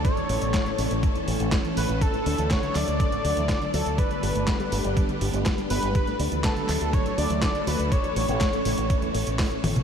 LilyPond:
<<
  \new Staff \with { instrumentName = "Analog synth lead" } { \time 4/4 \key d \major \tempo 4 = 122 cis''2 r4. b'8 | a'4 cis''8 d''8 d''4. a'8 | b'2 r4. b'8~ | b'8 r8 a'4 cis''8 d''4 b'8 |
cis''2. r4 | }
  \new Staff \with { instrumentName = "String machine" } { \time 4/4 \key d \major << { <a a'>1~ | <a a'>1 | <g g'>1 | <a a'>1~ |
<a a'>1 | } \\ { <e cis'>1 | <fis d'>1 | <d b>1 | <fis d'>1 |
<e cis'>1 | } >> }
  \new Staff \with { instrumentName = "Synth arpeggio sound" } { \clef bass \time 4/4 \key d \major a,16 e,16 a16 b,16 a,16 a,16 cis16 a,16 a,16 e,16 g,16 a,16 g,16 e16 cis16 a,16 | d16 a,16 d'16 e16 d16 d16 fis16 d16 d16 a,16 d'16 e16 d16 d16 fis16 d16 | g16 d16 g'16 a16 g16 g16 b16 g16 g16 d16 g'16 a16 g16 g16 b16 g16 | d16 a,16 d'16 e16 d16 d16 fis16 d16 d16 a,16 d'16 e16 d16 d16 fis16 d16 |
a,16 e,16 a16 b,16 a,16 a,16 cis16 a,16 a,16 e,16 a16 b,16 a,16 a,16 cis16 a,16 | }
  \new Staff \with { instrumentName = "Fingered electric bass" } { \clef bass \time 4/4 \key d \major r8 a,,16 a,,16 r8 a,,16 a,,16 r8 a,,16 a,,16 r8 a,,16 a,,16 | r8 d,16 d,16 r8 d,16 d,16 r8 d,16 d,16 r8 d,16 d,16 | r8 g,,16 g,,16 r8 g,,16 g,,16 r8 g,,16 g,,16 r8 g,,16 g,,16 | r8 d,16 d,16 r8 d,16 d,16 r8 d,16 d,16 r8 d,16 d,16 |
r8 a,,16 a,,16 r8 a,,16 a,,16 r8 a,,16 a,,16 r8 a,,16 a,,16 | }
  \new DrumStaff \with { instrumentName = "Drums" } \drummode { \time 4/4 <hh bd>16 hh16 hho16 hh16 <hc hh bd sn>16 hh16 hho16 hh16 <hh bd>16 hh16 hho16 hh16 <hc hh bd sn>16 hh16 hho16 hh16 | <hh bd>16 hh16 hho16 hh16 <hc hh bd sn>16 hh16 <hc hho>16 hh16 <hh bd>16 hh16 hho16 hh16 <hc hh bd sn>16 hh16 hho16 hh16 | <hh bd>16 hh16 hho16 hh16 <hc hh bd sn>16 hh16 hho16 hh16 <hh bd>16 hh16 hho16 hh16 <hc hh bd sn>16 hh16 hho16 hh16 | <hh bd>16 hh16 hho16 hh16 <hc hh bd sn>16 hh16 <hc hho>16 hh16 <hh bd>16 hh16 hho16 hh16 <hc hh bd sn>16 hh16 hho16 hh16 |
<hh bd>16 hh16 hho16 hh16 <hc hh bd sn>16 hh16 hho16 hh16 <hh bd>16 hh16 hho16 hh16 <hc hho bd sn>16 hh16 <hho tommh>16 <hh toml>16 | }
>>